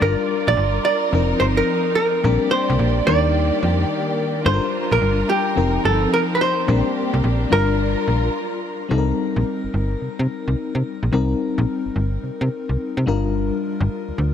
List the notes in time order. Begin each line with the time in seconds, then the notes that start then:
Already playing: D5
0.00 G1 G3 D4 F4 A#4
0.47 A#1 D5
0.57 G1
0.85 D5
1.12 F1 F3 C4 D#4 A#4
1.40 G1 C5
1.57 A#4
1.95 A#4
2.23 A#1 G3 A#3 C4 D4 G4 A#4 D5
2.51 C5
2.70 C2
2.79 A#1
3.06 D#2 D#3 G3 D4 D#4 G4 A#4 D5
3.63 F2 C5
4.45 G1 G3 D4 F4 A4 A#4 C5
4.54 A#4
4.91 A#1 A#4
5.02 G1
5.29 G4
5.56 F1 F3 C4 D#4 A#4
5.85 G1 A4
6.14 A#4
6.35 B4
6.41 C5
6.66 A#1 G3 A#3 C4 D4 G4 A#4
7.14 C2
7.24 A#1
7.50 G1 G3 D4 F4 A#4
8.08 A#1
8.89 C2 G3 C4 D#4 A4
8.98 A#4
9.36 A#1
9.64 G1
9.74 G1
10.02 C3
10.19 C3
10.48 C2
10.75 C3
11.03 A#1
11.12 C2 G3 C4 D#4 A#4
11.58 A#1
11.86 G1
11.96 G1
12.23 C3
12.41 C3
12.69 C2
12.97 C3
13.06 G1 G3 D4 F4 A#4
13.80 G1
14.08 D2
14.18 D2